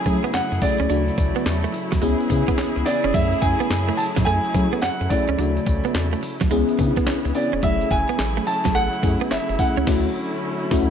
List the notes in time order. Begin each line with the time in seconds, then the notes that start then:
Already playing: C#3 F#3 A3 C#4 E4 G#4 G#5
0.06 F#3 A3 C#4 E4 G#4, muted clean electric guitar stroke, kick, closed hi-hat, tambourine
0.24 B3, closed hi-hat
0.34 F#2 C#4 F#5, snare, clap, closed hi-hat, tambourine
0.52 F#2, muted clean electric guitar stroke, closed hi-hat
0.62 A3 C#4 E4 G#4 D5, kick, open hi-hat
0.80 C#2 C#4, closed hi-hat
0.90 D2 C#3 A3 D4 E4 F#4, closed hi-hat, tambourine
1.08 closed hi-hat
1.18 D2, muted clean electric guitar stroke, kick, closed hi-hat, tambourine
1.36 B3, closed hi-hat
1.46 E2, snare, clap, closed hi-hat, tambourine
1.64 A3, closed hi-hat
1.74 muted clean electric guitar stroke, closed hi-hat, tambourine
1.92 D2 F#3, kick, snare, closed hi-hat
2.02 C#2 C#3 E3 G#3 B3 C#4 E4 G#4, closed hi-hat, tambourine
2.20 closed hi-hat
2.30 C#3 B3 C#4 E4 G#4, muted clean electric guitar stroke, kick, closed hi-hat, tambourine
2.48 B3, kick, closed hi-hat
2.58 C#2 C#4, snare, clap, closed hi-hat, tambourine
2.76 C#2, muted clean electric guitar stroke, closed hi-hat
2.86 B3 C#4 E4 G#4 D5, snare, open hi-hat
3.04 E1 C#4, closed hi-hat
3.14 F#2 F#3 A3 C#4 E4 G#4 E5, kick, closed hi-hat, tambourine
3.32 closed hi-hat
3.42 F#2 G#5, muted clean electric guitar stroke, kick, closed hi-hat, tambourine
3.60 B3, closed hi-hat
3.70 F#2, snare, clap, closed hi-hat, tambourine
3.89 A3, closed hi-hat
3.97 A5, muted clean electric guitar stroke, open hi-hat, tambourine
4.16 A2 F#3, kick, snare, closed hi-hat
4.25 F#2 A3 G#5, closed hi-hat, tambourine
4.45 closed hi-hat
4.54 F#3 A3 C#4 E4 G#4, muted clean electric guitar stroke, kick, closed hi-hat, tambourine
4.73 B3, closed hi-hat
4.82 F#2 C#4 F#5, snare, clap, closed hi-hat, tambourine
5.01 F#2, muted clean electric guitar stroke, closed hi-hat
5.10 A3 C#4 E4 G#4 D5, kick, open hi-hat
5.29 C#2 C#4, closed hi-hat
5.39 D2 C#3 A3 D4 E4 F#4, closed hi-hat, tambourine
5.57 closed hi-hat
5.67 D2, muted clean electric guitar stroke, kick, closed hi-hat, tambourine
5.85 B3, closed hi-hat
5.94 E2, snare, clap, closed hi-hat, tambourine
6.13 A3, closed hi-hat
6.23 muted clean electric guitar stroke, open hi-hat, tambourine
6.41 D2 F#3, kick, snare, closed hi-hat
6.51 C#2 C#3 E3 G#3 B3 C#4 E4 G#4, closed hi-hat, tambourine
6.69 closed hi-hat
6.79 C#3 B3 C#4 D4 G#4, muted clean electric guitar stroke, kick, closed hi-hat, tambourine
6.86 E4
6.97 B3, kick, closed hi-hat
7.07 C#2 C#4, snare, clap, closed hi-hat, tambourine
7.25 C#2, muted clean electric guitar stroke, closed hi-hat
7.35 B3 C#4 E4 G#4 D5, open hi-hat
7.53 E1 C#4, closed hi-hat
7.63 F#1 F#3 A3 C#4 E4 G#4 E5, kick, closed hi-hat, tambourine
7.81 closed hi-hat
7.91 F#1 G#5, muted clean electric guitar stroke, kick, closed hi-hat, tambourine
8.09 B3, closed hi-hat
8.19 A1, snare, clap, closed hi-hat, tambourine
8.37 A3, closed hi-hat
8.47 A5, muted clean electric guitar stroke, open hi-hat, tambourine
8.65 B1 F#3, kick, snare, closed hi-hat
8.75 A1 A3 F#5, closed hi-hat, tambourine
8.93 closed hi-hat
9.03 F#2 A3 C#4 E4 G#4, muted clean electric guitar stroke, kick, closed hi-hat, tambourine
9.21 B3, closed hi-hat
9.31 F#1 C#4 E5, snare, clap, closed hi-hat, tambourine
9.49 F#1, muted clean electric guitar stroke, closed hi-hat
9.59 A3 C#4 E4 G#4 F#5, kick, open hi-hat
9.77 C#2 C#4, closed hi-hat
9.87 D2 D3 A3 C#4 E4 F#4, kick, snare, crash
10.71 D2 A3 C#4 E4 F#4, kick, snare